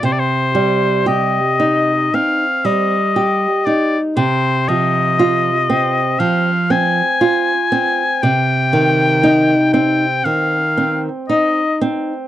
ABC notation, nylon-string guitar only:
X:1
M:4/4
L:1/8
Q:1/4=59
K:Cm
V:1 name="Nylon-string guitar"
C, G, G E C G, G E | C, F, F C F, C F C | C, E, E C E, C E C |]